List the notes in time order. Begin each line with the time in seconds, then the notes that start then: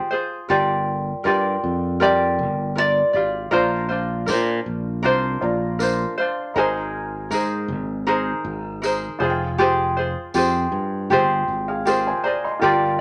Already playing: F4 G4 G#4
0.11 F4 G#4 C5
0.49 G1 F4 G4 A#4 D5
1.24 G2 F4 G4 A#4 D5
1.64 F2
2.00 F4 G4 A#4 D5
2.39 G1
2.76 F4 A#4 D5
3.13 G#1 F4 G4 D5
3.51 A#1 D4 F4 A#4 C5 D5 A#5
3.89 D4 F4 C5
4.26 A#2 D4 F4 A#4 C5, tambourine
4.66 A#1
5.03 C2 D4 F4 A#4 C5
5.41 A#1 F4 C5 D5 A#5
5.79 D4 F4 A#4 C5, tambourine
6.18 D4 F4 C5
6.54 G#1 D#4 G#4 A#4 C5 G#5
7.31 G#2 D#4 G#4 A#4 C5, tambourine
7.68 G#1
8.07 D#4 G#4 A#4 C5
8.45 G#1
8.82 D#4 G#4 A#4 C5, tambourine
9.19 F1 F4 G#4 C5
9.23 F4 F5
9.30 G5
9.58 F4 G4 G#4 C5
9.97 F4 G#4 C5
10.34 F2 F4 G4 G#4 C5, tambourine
10.72 G2
11.10 G1 F4 G4 G#4 C5
11.48 G#1
11.68 G#4 F5
11.85 F4 G4 G#4 A#4 C5 G5, tambourine
12.07 C5 G#5
12.24 F4 G#4 C5 D5 A#5
12.44 D#5 C6
12.59 G1 F4 G4 A#4 D5
12.64 D5 G5